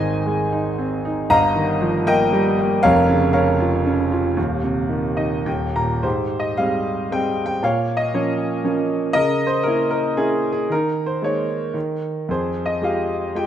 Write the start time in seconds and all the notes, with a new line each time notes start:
Already playing: G#1 G#2 C5 D#5 G#5
0.00 D#3
0.26 G#3
0.52 D#4
0.78 C4
1.05 D#4
1.30 G1 G2 D#5 F5 A#5
1.55 D#3
1.81 F3
2.06 A#3 A#4 D#5 G5
2.33 G3
2.59 A#3
2.83 F1 F2 A#4 C#5 F5
3.09 C#3
3.33 C#4 A#4 C#5 F5
3.60 F4
3.86 C#4
4.12 F4
4.37 D#1 D#2
4.64 C3
4.89 D#3
5.16 D#4 D#5
5.46 D#1 D#2 G5
5.76 A#2 A#5
6.03 G#2 G4 C5
6.40 D#5
6.58 G3 G#3 C4 F5
7.11 G3 G#3 C4 G5
7.46 G5
7.63 A#2 C#5 F5
7.97 D#5
8.14 F3 A#3 C#4 C#5
8.64 F3 A#3 C#4
9.13 C#3 A#4 D#5
9.47 C5
9.63 A#3 C#4 E4 A#4
9.91 A#4
10.17 A#3 C#4 E4 G#4
10.53 G#4
10.70 D#3 D#4 A#4
11.06 C5
11.22 G#3 A#3 D#4 C#5
11.74 D#3
12.29 F2 G#4 C5
12.66 D#5
12.82 G#3 F4 G4 F5
13.35 G#3 F4 G4 G5